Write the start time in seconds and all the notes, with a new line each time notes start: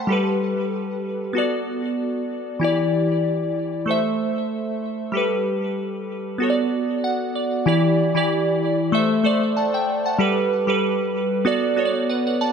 Already playing: A3 A4 C5 E5 F#5 G5 A5 B5 C6
0.07 G3 G4 A4
0.12 B4
1.33 B3 F#4 A4
1.38 D5
2.60 E3 E4 G4
2.64 D5
3.86 A3 A4 C5
3.91 E5
5.12 G3 G4 A4
5.17 B4
6.38 B3 F#4 A4
6.43 C#5
6.50 D5
7.04 F#5
7.35 D5
7.66 E3 E4 G4 D5
8.15 E3 E4 G4 D5
8.92 A3 A4 C5 E5
9.24 A3 A4 C5 D5
9.57 F#5 A5
9.74 E5 G5
10.06 F#5 A5
10.19 G3 G4 A4 B4
10.67 G3 G4 A4 B4
11.45 B3 F#4 A4 D5
11.76 B3 F#4 A4 C#5
11.85 D5
12.09 B4 D5 F#5
12.27 D5 F#5
12.41 D5 F#5 A5